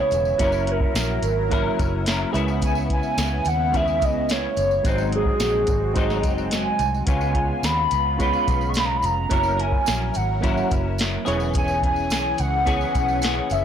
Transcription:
Already playing: analog synth pad C#3 B3 E4, clean electric guitar C#3 B3 E4 G#4, reed electric piano G#3 B3 C#4 E4 B4, soft synth lead C#5
0.11 fingered electric bass E1, closed hi-hat, tambourine
0.25 tambourine
0.38 fingered electric bass F#1, clean electric guitar F#3 C#4 E4, reed electric piano F#3 A#3 C#4 E4 A#4, analog synth pad F#3 E4 A#4, kick, closed hi-hat, tambourine
0.42 clean electric guitar A#4, soft synth lead C#5
0.52 tambourine
0.67 closed hi-hat
0.71 soft synth lead A#4
0.80 kick
0.95 fingered electric bass A#1, snare, closed hi-hat, tambourine
1.22 fingered electric bass G#1, closed hi-hat, tambourine
1.49 reed electric piano F#3 A#3 C#4 E4 A#4, clean electric guitar F#3 C#4 E4 A#4, kick, closed hi-hat, tambourine
1.79 fingered electric bass F#1, kick, closed hi-hat, tambourine
2.06 clean electric guitar F#3 C#4 E4 A#4, snare, closed hi-hat, tambourine
2.33 fingered electric bass C#2, analog synth pad C#3 B3, reed electric piano G#3 B3 C#4 E4 B4, clean electric guitar B3 E4 G#4, closed hi-hat, tambourine
2.37 clean electric guitar C#3
2.48 tambourine
2.62 soft synth lead G#5, kick, closed hi-hat, tambourine
2.75 tambourine
2.90 soft synth lead G#5, kick, closed hi-hat
3.03 tambourine
3.18 fingered electric bass C#2, snare, closed hi-hat, tambourine
3.45 fingered electric bass D#2, soft synth lead F#5, closed hi-hat, tambourine
3.72 clean electric guitar C#3 B3 E4, reed electric piano G#3 B3 C#4 E4 B4, kick, closed hi-hat, tambourine
3.76 clean electric guitar G#4, soft synth lead E5
3.88 tambourine
4.02 fingered electric bass C#2, soft synth lead D#5, kick, closed hi-hat, tambourine
4.29 soft synth lead C#5, snare, closed hi-hat, tambourine
4.56 fingered electric bass F#1, closed hi-hat, tambourine
4.71 tambourine
4.83 fingered electric bass G#1, clean electric guitar G#2 F#3 C4, reed electric piano G#3 C4 D#4 F#4 C5, analog synth pad G#3 C4 F#4, kick, closed hi-hat, tambourine
4.87 clean electric guitar D#4, soft synth lead C5
4.98 tambourine
5.12 soft synth lead G#4, closed hi-hat
5.25 kick
5.40 fingered electric bass A#1, snare, closed hi-hat, tambourine
5.67 fingered electric bass G#1, kick, closed hi-hat, tambourine
5.94 clean electric guitar G#2 F#3 C4 D#4, reed electric piano G#3 C4 D#4 F#4 C5, kick, closed hi-hat, tambourine
6.10 snare, tambourine
6.23 fingered electric bass F#1, kick, closed hi-hat, tambourine
6.38 tambourine
6.51 soft synth lead G#5, snare, closed hi-hat, tambourine
6.79 fingered electric bass C2, closed hi-hat, tambourine
6.94 tambourine
7.06 fingered electric bass C#2, clean electric guitar C#3 G#3 B3 F4, analog synth pad C#3 B3 F4, reed electric piano B3 C#4 F4 G#4 C#5, soft synth lead G#5, kick, closed hi-hat, tambourine
7.21 tambourine
7.35 clean electric guitar G#3 B3 F4, kick, closed hi-hat
7.63 fingered electric bass D#2, soft synth lead B5, snare, closed hi-hat, tambourine
7.91 fingered electric bass C#2, closed hi-hat, tambourine
8.17 clean electric guitar C#3 G#3 B3, reed electric piano B3 C#4 F4 G#4 C#5, soft synth lead B5, kick, closed hi-hat, tambourine
8.22 clean electric guitar F4
8.33 tambourine
8.47 fingered electric bass B1, kick, closed hi-hat, tambourine
8.61 tambourine
8.69 soft synth lead C#6
8.74 soft synth lead B5, snare, closed hi-hat, tambourine
8.85 soft synth lead A#5
8.96 soft synth lead B5
9.02 fingered electric bass F1, soft synth lead A#5, closed hi-hat, tambourine
9.29 fingered electric bass F#1, clean electric guitar F#3 C#4 E4 A#4, analog synth pad F#3 E4 A#4, reed electric piano A#3 C#4 E4 F#4 C#5, kick, closed hi-hat, tambourine
9.43 tambourine
9.57 clean electric guitar C#4 E4 A#4, soft synth lead G#5, closed hi-hat
9.72 kick
9.86 fingered electric bass A#1, snare, closed hi-hat, tambourine
10.14 fingered electric bass G#1, soft synth lead F#5, closed hi-hat, tambourine
10.41 clean electric guitar F#3 C#4 E4 A#4, reed electric piano A#3 C#4 E4 F#4 C#5, kick, closed hi-hat, tambourine
10.57 tambourine
10.71 fingered electric bass F#1, kick, closed hi-hat, tambourine
10.98 snare, closed hi-hat, tambourine
11.25 fingered electric bass E1, analog synth pad E3 C#4 G#4, reed electric piano B3 C#4 E4 G#4 C#5, clean electric guitar B3 C#4 G#4, closed hi-hat, tambourine
11.29 clean electric guitar E3
11.40 tambourine
11.54 soft synth lead G#5, kick, closed hi-hat, tambourine
11.68 tambourine
11.83 soft synth lead G#5, kick, closed hi-hat
11.96 tambourine
12.10 fingered electric bass B1, snare, closed hi-hat, tambourine
12.38 fingered electric bass C#2, soft synth lead F#5, closed hi-hat, tambourine
12.65 clean electric guitar E3 B3 C#4 G#4, reed electric piano B3 C#4 E4 G#4 C#5, kick, closed hi-hat, tambourine
12.81 tambourine
12.95 fingered electric bass B1, kick, closed hi-hat, tambourine
13.08 tambourine
13.21 clean electric guitar E3 B3 C#4 G#4, snare, closed hi-hat, tambourine
13.50 fingered electric bass F#1, soft synth lead E5, closed hi-hat, tambourine

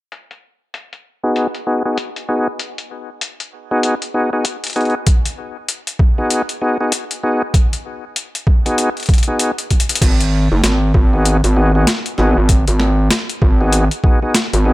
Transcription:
0.12 closed hi-hat
0.31 closed hi-hat
0.74 closed hi-hat
0.93 closed hi-hat
1.23 tonewheel organ B3 D#4 F#4 G#4
1.36 closed hi-hat
1.55 closed hi-hat
1.67 tonewheel organ B3 D#4 F#4 G#4
1.85 tonewheel organ B3 D#4 F#4 G#4
1.98 closed hi-hat
2.16 closed hi-hat
2.29 tonewheel organ B3 D#4 F#4 G#4
2.59 closed hi-hat
2.78 closed hi-hat
3.21 closed hi-hat
3.40 closed hi-hat
3.71 tonewheel organ B3 D#4 F#4 G#4
3.83 closed hi-hat
4.02 closed hi-hat
4.14 tonewheel organ B3 D#4 F#4 G#4
4.33 tonewheel organ B3 D#4 F#4 G#4
4.45 closed hi-hat
4.64 closed hi-hat
4.67 closed hi-hat
4.70 closed hi-hat
4.73 tonewheel organ D#4, closed hi-hat
4.76 tonewheel organ B3 F#4 G#4, closed hi-hat
4.81 closed hi-hat
4.85 closed hi-hat
4.90 closed hi-hat
5.07 kick, closed hi-hat
5.25 closed hi-hat
5.68 closed hi-hat
5.87 closed hi-hat
5.99 kick
6.18 tonewheel organ B3 D#4 F#4 G#4
6.30 closed hi-hat
6.49 closed hi-hat
6.61 tonewheel organ B3 D#4 F#4 G#4
6.81 tonewheel organ B3 D#4 F#4 G#4
6.92 closed hi-hat
7.11 closed hi-hat
7.23 tonewheel organ B3 D#4 F#4 G#4
7.54 kick, closed hi-hat
7.73 closed hi-hat
8.16 closed hi-hat
8.35 closed hi-hat
8.47 kick
8.66 tonewheel organ B3 D#4 F#4 G#4, closed hi-hat
8.78 closed hi-hat
8.97 closed hi-hat
9.00 closed hi-hat
9.03 closed hi-hat
9.06 kick, closed hi-hat
9.09 closed hi-hat
9.14 closed hi-hat
9.18 closed hi-hat
9.23 closed hi-hat
9.28 tonewheel organ B3 D#4 F#4 G#4
9.39 closed hi-hat
9.58 closed hi-hat
9.70 kick, closed hi-hat
9.80 closed hi-hat
9.89 closed hi-hat
9.95 closed hi-hat
10.02 analog synth bass G#1, kick, closed hi-hat, crash
10.20 closed hi-hat
10.52 analog synth bass F#1
10.64 analog synth bass G#1, snare, closed hi-hat
10.94 analog synth bass G#1, kick
11.13 tonewheel organ B3 D#4 F#4 G#4
11.25 closed hi-hat
11.44 analog synth bass G#1, closed hi-hat
11.56 tonewheel organ B3 D#4 F#4 G#4
11.75 tonewheel organ B3 D#4 F#4 G#4
11.87 snare, closed hi-hat
12.06 closed hi-hat
12.18 analog synth bass G#1, tonewheel organ B3 D#4 F#4 G#4, snare
12.37 analog synth bass G#1
12.49 kick, closed hi-hat
12.68 analog synth bass G#1, closed hi-hat
12.80 snare
13.11 snare, closed hi-hat
13.29 closed hi-hat
13.42 analog synth bass G#1, kick
13.61 tonewheel organ B3 D#4 F#4 G#4
13.72 closed hi-hat
13.91 closed hi-hat
14.04 tonewheel organ B3 D#4 F#4 G#4, kick
14.22 tonewheel organ B3 D#4 F#4 G#4
14.35 snare, closed hi-hat
14.53 analog synth bass G#1, closed hi-hat
14.65 tonewheel organ B3 D#4 F#4 G#4

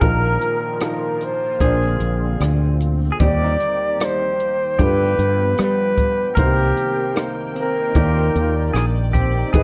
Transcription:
0.01 fretless electric bass A#1, felt piano A#1 A#2 F3 D#4 A#4, analog synth pad D#3 F3 A#3 F4, pedal steel guitar A#4, flugelhorn A#4, kick, closed hi-hat
0.41 closed hi-hat
0.80 felt piano F3 D#4 A#4, cross-stick, closed hi-hat
0.85 flugelhorn A#4
1.21 closed hi-hat
1.25 flugelhorn C5
1.60 fretless electric bass A#1, felt piano A#1 A#2 A#3 D4 C5, analog synth pad D3 C4, pedal steel guitar G#4, kick, closed hi-hat
2.00 fretless electric bass A#1, closed hi-hat
2.40 fretless electric bass D2, cross-stick, closed hi-hat
2.80 closed hi-hat
3.12 pedal steel guitar G#4
3.20 fretless electric bass D#2, felt piano D#2 D#3 G3 D#4 D5, analog synth pad D#3 A#3 G5, clean electric guitar C4, pedal steel guitar G4, flugelhorn D5, kick, closed hi-hat
3.44 clean electric guitar D#4
3.60 closed hi-hat
3.99 felt piano G3 D#4 D5, cross-stick, closed hi-hat
4.05 flugelhorn C5
4.40 closed hi-hat
4.78 felt piano G1 G2 G3 F4 B4, fretless electric bass G2, analog synth pad F3 B3, pedal steel guitar G4, kick, closed hi-hat
4.84 flugelhorn B4
5.19 fretless electric bass G2, closed hi-hat
5.58 fretless electric bass G3, cross-stick, closed hi-hat
5.63 flugelhorn B4
5.97 kick, closed hi-hat
6.35 fretless electric bass C2, felt piano C2 C3 A#3 D#4 C5, analog synth pad D#3 A#3 C4, pedal steel guitar A#4, kick, closed hi-hat
6.42 flugelhorn G4
6.77 closed hi-hat
7.15 felt piano A#3 D#4 C5, cross-stick, closed hi-hat
7.56 clean electric guitar C4, closed hi-hat
7.60 flugelhorn A#4
7.80 clean electric guitar D#4
7.94 fretless electric bass D#2, felt piano D#2 D#3 A#3 D#4 D5, pedal steel guitar G4, analog synth pad D5, kick, closed hi-hat
8.06 clean electric guitar F4
8.35 fretless electric bass D#2, closed hi-hat
8.73 fretless electric bass A#1, pedal steel guitar G#4, cross-stick, closed hi-hat
9.13 clean electric guitar C4, pedal steel guitar G4, kick, closed hi-hat
9.39 clean electric guitar D#4
9.53 felt piano G#1 G#2 G#3 D#4 B4, fretless electric bass G#1, analog synth pad G#3 G#4 B4, pedal steel guitar G#4, kick, closed hi-hat
9.58 flugelhorn D#5

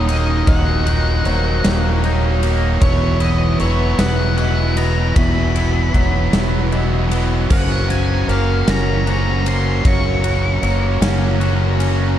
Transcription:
Already playing: fingered electric bass D#1, distorted electric guitar D#3 F#3 A#3 D#4, clean electric guitar F#3, analog synth pad C#4 D#4 F#4, vibraphone C#5
0.08 clean electric guitar A#3, lead electric guitar D#5, ride
0.46 fingered electric bass D#1, distorted electric guitar D#2 A#2 D#3 F#3 A#3 D#4, analog synth pad A#4, vibraphone D#5, lead electric guitar F#5, kick, ride
0.85 distorted electric guitar D#3 F#3 A#3 D#4, ride
1.24 fingered electric bass D#1, distorted electric guitar D#3 F#3 A#3 D#4, vibraphone C5, ride
1.63 fingered electric bass D#1, distorted electric guitar D#2 A#2 D#3 F#3 A#3 D#4, snare, ride
2.02 distorted electric guitar D#3 F#3 A#3 D#4, vibraphone C#5, ride
2.43 clean electric guitar A#3, ride
2.81 fingered electric bass E1, distorted electric guitar E2 B2 E3 F#3 B3 E4, analog synth pad E4 B4, lead electric guitar C#5, vibraphone C#5, kick, ride
3.20 distorted electric guitar E3 F#3 B3 E4, lead electric guitar D#5, ride
3.59 fingered electric bass E1, distorted electric guitar E3 F#3 B3 E4, vibraphone B4, lead electric guitar C#5, ride
3.98 fingered electric bass E1, distorted electric guitar E2 B2 E3 F#3 B3 E4, lead electric guitar F#5, snare, ride
4.37 distorted electric guitar E3 F#3 B3 E4, vibraphone D#5, lead electric guitar F#5, ride
4.77 clean electric guitar B3, lead electric guitar A#5, ride
5.15 fingered electric bass E1, distorted electric guitar E2 B2 E3 F#3 B3 E4, vibraphone E5, lead electric guitar B5, kick, ride
5.54 distorted electric guitar E3 F#3 B3 E4, ride
5.93 fingered electric bass E1, distorted electric guitar E3 F#3 B3 E4, vibraphone C#5, kick, ride
6.33 fingered electric bass E1, distorted electric guitar E2 B2 E3 F#3 B3 E4, snare, ride
6.72 distorted electric guitar E3 F#3 B3 E4, vibraphone D#5, ride
7.11 clean electric guitar B3, ride
7.50 fingered electric bass F#1, distorted electric guitar F#2 C#3 F#3 A#3 C#4 F#4, analog synth pad F#4 A#5, vibraphone C5, lead electric guitar F#5, kick, crash
7.89 distorted electric guitar F#3 A#3 C#4 F#4, lead electric guitar G#5, ride
8.28 fingered electric bass F#1, distorted electric guitar F#3 A#3 C#4 F#4, vibraphone A#4, lead electric guitar F5, ride
8.67 fingered electric bass F#1, distorted electric guitar F#2 C#3 F#3 A#3 C#4 F#4, lead electric guitar A#5, snare, ride
9.06 distorted electric guitar F#3 A#3 C#4 F#4, vibraphone C5, ride
9.10 lead electric guitar A#5
9.46 clean electric guitar C#4, lead electric guitar C6, ride
9.84 fingered electric bass F#1, distorted electric guitar F#2 C#3 F#3 A#3 C#4 F#4, vibraphone C#5, lead electric guitar C#6, kick, ride
10.24 distorted electric guitar F#3 A#3 C#4 F#4, ride
10.63 fingered electric bass F#1, distorted electric guitar F#3 A#3 C#4 F#4, vibraphone C#5, ride
11.01 fingered electric bass F#1, distorted electric guitar F#2 C#3 F#3 A#3 C#4 F#4, snare, ride
11.41 distorted electric guitar F#3 A#3 C#4 F#4, vibraphone C#5, ride
11.80 clean electric guitar C#4, ride

